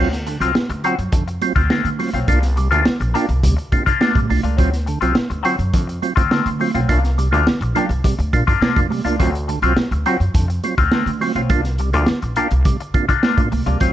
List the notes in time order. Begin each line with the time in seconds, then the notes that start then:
Already playing: D2 F#3
0.00 C4 F4
0.12 muted clean electric guitar stroke, snare, closed hi-hat
0.26 D3, muted clean electric guitar stroke, closed hi-hat, muted conga
0.40 C2 F#3 C4 F4, closed hi-hat
0.55 snare, high conga
0.69 D2, muted clean electric guitar stroke, closed hi-hat
0.84 F#3 C4 F4 F#4, closed hi-hat
0.99 F#2, muted clean electric guitar stroke, closed hi-hat
1.12 F2 D3, muted clean electric guitar stroke, kick, closed hi-hat
1.28 muted clean electric guitar stroke, closed hi-hat
1.42 F#3 C4 F4, closed hi-hat, muted conga
1.56 D2 F#3 C4 F4, kick, closed hi-hat
1.70 D3 F#3 C4 F4, snare, high conga
1.85 D3, closed hi-hat
1.99 F#3 C4 F4, muted clean electric guitar stroke, open hi-hat, high conga
2.13 B1 F#3 C4 F4, closed hi-hat
2.28 C2 A#3 D4 F4, kick, closed hi-hat, muted conga
2.43 muted clean electric guitar stroke, snare, closed hi-hat
2.56 C3 G3, muted clean electric guitar stroke, closed hi-hat, muted conga
2.71 D2 A#3 D4 F4, closed hi-hat
2.85 muted upright bass stroke, snare, high conga
3.00 A#1, muted clean electric guitar stroke, closed hi-hat
3.14 A#3 D4 F4 G4, closed hi-hat
3.29 C2, muted clean electric guitar stroke, closed hi-hat
3.43 D2 C3 G3, muted clean electric guitar stroke, kick, closed hi-hat
3.57 muted clean electric guitar stroke, closed hi-hat
3.72 C3 A#3 D4 F4, kick, closed hi-hat, muted conga
3.86 A#3 D4 F4, kick, closed hi-hat
4.01 A#3 D4 F4, snare, high conga
4.15 A2 C3 G3, kick, closed hi-hat
4.29 C2 D4 F4, muted clean electric guitar stroke, open hi-hat, high conga
4.43 C#2 A#3 D4 F4, closed hi-hat
4.57 D2 F#3 C4 F4, kick, closed hi-hat, muted conga
4.72 muted clean electric guitar stroke, snare, closed hi-hat
4.86 D3, muted clean electric guitar stroke, closed hi-hat
5.01 C2 F#3 C4 F4, closed hi-hat
5.15 muted upright bass stroke, snare, high conga
5.30 D2, muted clean electric guitar stroke, closed hi-hat
5.43 F#3 C4 F4 F#4, closed hi-hat
5.58 F#2, muted clean electric guitar stroke, closed hi-hat
5.73 F2 D3, muted clean electric guitar stroke, kick, closed hi-hat
5.87 muted clean electric guitar stroke, closed hi-hat
6.02 F#3 C4 F4, closed hi-hat, muted conga
6.16 D2 F#3 C4 F4, kick, closed hi-hat
6.30 D3 F#3 C4 F4, snare, high conga
6.46 D3, closed hi-hat
6.60 F#3 C4 F4, muted clean electric guitar stroke, open hi-hat, high conga
6.75 B1 F#3 C4 F4, closed hi-hat
6.89 C2 A#3 D4 F4, kick, closed hi-hat, muted conga
7.04 muted clean electric guitar stroke, snare, closed hi-hat
7.18 C3 G3, muted clean electric guitar stroke, closed hi-hat, muted conga
7.31 D2 A#3 D4 F4, closed hi-hat
7.47 muted upright bass stroke, snare, high conga
7.61 A#1, muted clean electric guitar stroke, closed hi-hat
7.75 A#3 D4 F4 G4, closed hi-hat, low conga
7.89 C2, muted clean electric guitar stroke, closed hi-hat
8.04 C3 G3, muted clean electric guitar stroke, kick, closed hi-hat
8.19 D2, muted clean electric guitar stroke, closed hi-hat
8.33 A#2 A#3 D4 F4, kick, closed hi-hat, muted conga
8.47 G2 A#3 D4 F4, kick, closed hi-hat
8.61 C3 A#3 D4 F4, snare, high conga
8.76 F2 A#3 D4 F4, kick, closed hi-hat
8.90 C3 G3, muted clean electric guitar stroke, open hi-hat, high conga
9.04 C#2 A#3 D4 F4, closed hi-hat
9.19 D2 F#3 C4 F4, kick, closed hi-hat, muted conga
9.34 muted clean electric guitar stroke, closed hi-hat
9.48 D3, muted clean electric guitar stroke, closed hi-hat, muted conga
9.62 C2 F#3 C4 F4, closed hi-hat
9.77 muted upright bass stroke, snare, high conga
9.91 D2, muted clean electric guitar stroke, closed hi-hat
10.06 F#3 C4 F4 F#4, closed hi-hat
10.20 F#2, muted clean electric guitar stroke, closed hi-hat
10.34 F2 D3, muted clean electric guitar stroke, kick, closed hi-hat
10.48 muted clean electric guitar stroke, closed hi-hat
10.64 F#3 C4 F4, closed hi-hat, muted conga
10.78 D2 F#3 C4 F4, kick, closed hi-hat
10.91 D3 F#3 C4 F4, snare, high conga
11.06 D3, closed hi-hat
11.21 F#3 C4 F4, muted clean electric guitar stroke, open hi-hat, high conga
11.35 B1 F#3 C4 F4, closed hi-hat
11.49 C2 A#3 D4 F4, kick, closed hi-hat, muted conga
11.64 muted clean electric guitar stroke, snare, closed hi-hat
11.78 C3 G3, muted clean electric guitar stroke, closed hi-hat
11.93 D2 A#3 D4 F4, closed hi-hat
12.06 muted upright bass stroke, snare, high conga
12.22 A#1, muted clean electric guitar stroke, closed hi-hat
12.36 A#3 D4 F4 G4, closed hi-hat
12.50 C2, muted clean electric guitar stroke, closed hi-hat
12.65 D2 C3 G3, muted clean electric guitar stroke, kick, closed hi-hat
12.80 muted clean electric guitar stroke, closed hi-hat
12.94 C3 A#3 D4 F4, kick, closed hi-hat, muted conga
13.09 A#3 D4 F4, kick, closed hi-hat
13.23 A#3 D4 F4, snare, high conga
13.37 A2 A#3 D4 F4, kick, closed hi-hat
13.52 C2, muted clean electric guitar stroke, open hi-hat, high conga
13.66 C#2 C3 G3 A#3 D4 F4, closed hi-hat
13.80 D2 F#3 C4 F4, kick, closed hi-hat, muted conga